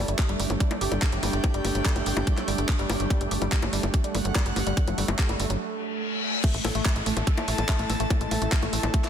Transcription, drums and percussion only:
0.08 closed hi-hat soft
0.19 kick loud
0.19 clap loud
0.19 closed hi-hat medium
0.19 high bongo soft
0.29 closed hi-hat soft
0.40 open hi-hat loud
0.50 closed hi-hat soft
0.50 high bongo soft
0.60 kick loud
0.60 closed hi-hat medium
0.71 closed hi-hat soft
0.71 high bongo medium
0.81 open hi-hat loud
0.92 closed hi-hat medium
0.92 high bongo soft
1.02 kick loud
1.02 clap loud
1.02 closed hi-hat medium
1.12 closed hi-hat medium
1.23 open hi-hat loud
1.23 high bongo soft
1.33 closed hi-hat soft
1.44 kick loud
1.44 closed hi-hat medium
1.44 high bongo medium
1.54 closed hi-hat medium
1.65 open hi-hat loud
1.65 high bongo soft
1.75 closed hi-hat medium
1.85 kick loud
1.85 clap loud
1.85 closed hi-hat medium
1.96 closed hi-hat medium
1.96 high bongo soft
2.06 open hi-hat loud
2.17 closed hi-hat medium
2.17 high bongo medium
2.27 kick loud
2.27 closed hi-hat medium
2.38 clap soft
2.38 closed hi-hat soft
2.38 high bongo soft
2.48 open hi-hat loud
2.58 closed hi-hat medium
2.69 kick loud
2.69 clap loud
2.69 closed hi-hat medium
2.69 high bongo soft
2.79 closed hi-hat soft
2.90 open hi-hat loud
2.90 high bongo medium
3.00 closed hi-hat medium
3.10 kick loud
3.10 closed hi-hat loud
3.10 high bongo soft
3.21 closed hi-hat medium
3.31 open hi-hat loud
3.42 closed hi-hat medium
3.42 high bongo soft
3.52 kick loud
3.52 clap loud
3.52 closed hi-hat loud
3.62 closed hi-hat medium
3.62 high bongo medium
3.73 open hi-hat loud
3.83 closed hi-hat medium
3.83 high bongo soft
3.94 kick loud
3.94 closed hi-hat medium
4.04 closed hi-hat medium
4.15 open hi-hat loud
4.15 high bongo soft
4.25 closed hi-hat medium
4.35 kick loud
4.35 clap loud
4.35 closed hi-hat loud
4.35 high bongo medium
4.46 closed hi-hat medium
4.56 open hi-hat loud
4.56 high bongo soft
4.67 closed hi-hat medium
4.77 kick loud
4.77 closed hi-hat loud
4.88 closed hi-hat medium
4.88 high bongo soft
4.98 open hi-hat loud
5.08 closed hi-hat medium
5.08 high bongo medium
5.19 kick loud
5.19 clap loud
5.19 closed hi-hat loud
5.29 closed hi-hat medium
5.29 high bongo soft
5.40 open hi-hat loud
5.50 closed hi-hat medium
6.44 kick loud
6.44 closed hi-hat loud
6.44 crash loud
6.44 high bongo soft
6.54 closed hi-hat medium
6.65 open hi-hat loud
6.65 high bongo medium
6.75 closed hi-hat medium
6.85 kick loud
6.85 clap loud
6.85 closed hi-hat medium
6.85 high bongo soft
6.96 closed hi-hat medium
7.06 open hi-hat loud
7.17 closed hi-hat medium
7.17 high bongo soft
7.27 kick loud
7.27 closed hi-hat medium
7.38 closed hi-hat medium
7.38 high bongo medium
7.48 open hi-hat loud
7.58 closed hi-hat medium
7.58 high bongo soft
7.69 kick loud
7.69 clap loud
7.69 closed hi-hat loud
7.79 closed hi-hat medium
7.90 open hi-hat loud
7.90 high bongo soft
8.00 closed hi-hat medium
8.10 kick loud
8.10 closed hi-hat loud
8.10 high bongo medium
8.21 closed hi-hat medium
8.31 open hi-hat loud
8.31 high bongo soft
8.42 closed hi-hat medium
8.52 kick loud
8.52 clap loud
8.52 closed hi-hat medium
8.63 closed hi-hat medium
8.63 high bongo soft
8.73 open hi-hat loud
8.83 closed hi-hat medium
8.83 high bongo medium
8.94 kick loud
8.94 closed hi-hat medium
9.04 clap soft
9.04 closed hi-hat medium
9.04 high bongo soft

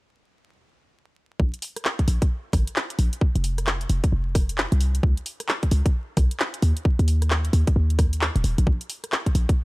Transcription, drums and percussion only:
1.40 kick loud
1.54 closed hi-hat soft
1.62 open hi-hat loud
1.76 cross-stick soft
1.76 closed hi-hat medium
1.85 clap loud
1.99 kick medium
1.99 closed hi-hat soft
2.08 open hi-hat loud
2.22 kick loud
2.22 closed hi-hat medium
2.53 kick loud
2.53 cross-stick medium
2.53 open hi-hat loud
2.67 closed hi-hat medium
2.76 clap loud
2.90 closed hi-hat soft
2.99 open hi-hat loud
3.13 closed hi-hat medium
3.21 kick loud
3.36 closed hi-hat soft
3.44 open hi-hat loud
3.58 cross-stick soft
3.58 closed hi-hat medium
3.67 clap loud
3.81 closed hi-hat soft
3.90 open hi-hat loud
4.04 kick loud
4.04 closed hi-hat medium
4.35 kick loud
4.35 cross-stick medium
4.35 open hi-hat loud
4.49 closed hi-hat medium
4.58 clap loud
4.72 closed hi-hat soft
4.81 open hi-hat loud
4.95 closed hi-hat medium
5.03 kick loud
5.17 closed hi-hat soft
5.26 open hi-hat loud
5.40 cross-stick soft
5.40 closed hi-hat medium
5.49 clap loud
5.63 kick medium
5.63 closed hi-hat soft
5.71 open hi-hat loud
5.86 kick loud
5.86 closed hi-hat medium
6.17 kick loud
6.17 cross-stick medium
6.17 open hi-hat loud
6.31 closed hi-hat medium
6.40 clap loud
6.54 closed hi-hat soft
6.62 open hi-hat loud
6.77 closed hi-hat medium
6.85 kick loud
6.99 closed hi-hat soft
7.08 open hi-hat loud
7.22 cross-stick soft
7.22 closed hi-hat medium
7.31 clap loud
7.45 closed hi-hat soft
7.53 open hi-hat loud
7.67 kick loud
7.67 closed hi-hat medium
7.90 closed hi-hat soft
7.99 kick loud
7.99 cross-stick medium
7.99 open hi-hat loud
8.13 closed hi-hat medium
8.21 clap loud
8.36 closed hi-hat soft
8.44 open hi-hat loud
8.58 closed hi-hat medium
8.67 kick loud
8.81 closed hi-hat medium
8.90 open hi-hat loud
9.04 cross-stick soft
9.04 closed hi-hat medium
9.12 clap loud
9.26 kick medium
9.26 closed hi-hat soft
9.35 open hi-hat loud
9.49 kick loud
9.49 closed hi-hat medium

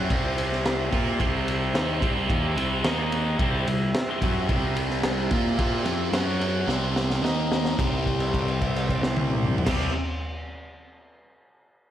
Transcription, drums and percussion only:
0.10 kick loud
0.10 ride loud
0.38 ride medium
0.52 snare soft
0.66 snare loud
0.66 ride medium
0.93 kick loud
0.93 ride medium
1.20 kick loud
1.20 ride loud
1.48 ride medium
1.75 snare loud
1.75 ride loud
2.02 kick loud
2.02 ride medium
2.30 kick loud
2.30 ride medium
2.58 ride medium
2.84 snare loud
2.84 ride loud
3.12 ride medium
3.39 kick loud
3.39 ride loud
3.67 ride medium
3.95 snare loud
3.95 ride loud
4.22 kick loud
4.22 ride medium
4.49 kick loud
4.49 ride medium
4.76 ride medium
4.90 snare soft
5.03 snare loud
5.03 ride loud
5.31 kick loud
5.31 ride medium
5.59 kick loud
5.59 ride loud
5.85 snare soft
5.85 ride medium
6.13 snare loud
6.13 ride loud
6.41 ride medium
6.69 snare medium
6.96 snare medium
7.10 snare medium
7.25 snare medium
7.52 snare loud
7.65 snare medium
7.79 kick loud
7.79 crash medium
8.06 kick medium
8.06 crash soft
8.20 crash medium
8.34 kick medium
8.34 crash medium
8.48 crash soft
8.62 kick medium
8.62 crash medium
8.76 crash medium
8.89 kick medium
8.89 crash medium
9.03 snare loud
9.17 high tom loud
9.30 mid tom loud
9.44 mid tom loud
9.58 floor tom loud
9.66 kick loud
9.66 snare loud
9.66 crash loud

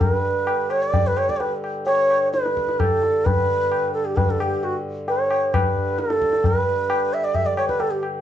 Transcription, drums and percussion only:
0.01 tabla tin loud
0.01 tabla ge medium
0.47 tabla na medium
0.70 tabla na medium
0.94 tabla tin medium
0.94 tabla ge medium
1.17 tabla na medium
1.29 tabla ke medium
1.40 tabla tin medium
1.64 tabla na medium
1.87 tabla tin medium
2.10 tabla na medium
2.34 tabla te medium
2.46 tabla te medium
2.57 tabla ke medium
2.69 tabla te medium
2.80 tabla na medium
2.80 tabla ge medium
3.03 tabla te medium
3.26 tabla tin loud
3.26 tabla ge medium
3.72 tabla na medium
4.17 tabla tin medium
4.17 tabla ge medium
4.40 tabla na medium
4.63 tabla tin medium
5.08 tabla tin medium
5.31 tabla na medium
5.54 tabla na medium
5.54 tabla ge medium
5.76 tabla ge medium
5.98 tabla te medium
6.10 tabla te medium
6.22 tabla ke medium
6.33 tabla te medium
6.44 tabla tin loud
6.44 tabla ge medium
6.90 tabla na medium
7.35 tabla tin medium
7.35 tabla ge medium
7.57 tabla na medium
7.69 tabla ke medium
7.80 tabla tin medium
8.03 tabla na medium

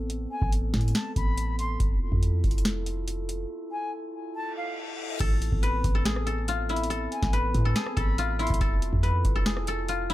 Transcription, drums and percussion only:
0.10 closed hi-hat medium
0.42 kick medium
0.52 closed hi-hat medium
0.74 kick loud
0.74 snare medium
0.74 closed hi-hat soft
0.81 closed hi-hat medium
0.88 closed hi-hat medium
0.95 snare loud
0.95 closed hi-hat medium
1.16 kick medium
1.16 closed hi-hat medium
1.38 closed hi-hat medium
1.59 closed hi-hat medium
1.80 kick loud
1.80 closed hi-hat medium
2.12 kick medium
2.23 closed hi-hat medium
2.44 kick loud
2.44 closed hi-hat soft
2.51 closed hi-hat medium
2.58 closed hi-hat medium
2.65 snare loud
2.65 closed hi-hat medium
2.86 closed hi-hat medium
3.08 closed hi-hat loud
3.29 closed hi-hat medium
5.20 kick loud
5.20 closed hi-hat medium
5.20 crash loud
5.42 closed hi-hat medium
5.52 kick medium
5.63 closed hi-hat medium
5.84 kick loud
5.84 closed hi-hat medium
6.05 snare loud
6.05 closed hi-hat medium
6.16 cross-stick medium
6.27 closed hi-hat medium
6.48 closed hi-hat loud
6.69 closed hi-hat soft
6.76 closed hi-hat medium
6.84 closed hi-hat medium
6.91 closed hi-hat medium
7.12 closed hi-hat medium
7.23 kick medium
7.23 snare medium
7.33 closed hi-hat medium
7.54 kick loud
7.54 closed hi-hat medium
7.76 snare loud
7.76 closed hi-hat medium
7.86 cross-stick medium
7.97 kick loud
7.97 closed hi-hat medium
8.18 closed hi-hat loud
8.40 closed hi-hat soft
8.47 kick loud
8.47 closed hi-hat medium
8.54 closed hi-hat medium
8.61 kick loud
8.61 closed hi-hat medium
8.82 closed hi-hat medium
8.93 kick medium
9.03 closed hi-hat medium
9.25 kick loud
9.25 closed hi-hat medium
9.46 snare loud
9.46 closed hi-hat medium
9.57 cross-stick medium
9.67 closed hi-hat medium
9.88 closed hi-hat loud
10.10 closed hi-hat medium

